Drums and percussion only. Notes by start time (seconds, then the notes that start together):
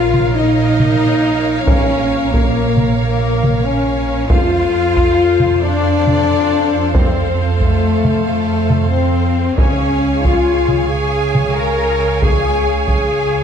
0.14 taiko mid
0.80 taiko mid
1.67 taiko
2.34 taiko
2.77 taiko mid
3.44 taiko mid
4.30 taiko
4.97 taiko
5.40 taiko mid
6.07 taiko mid
6.95 taiko
7.61 taiko
8.04 taiko mid
8.70 taiko mid
9.58 taiko
10.25 taiko
10.68 taiko mid
11.35 taiko mid
12.22 taiko
12.88 taiko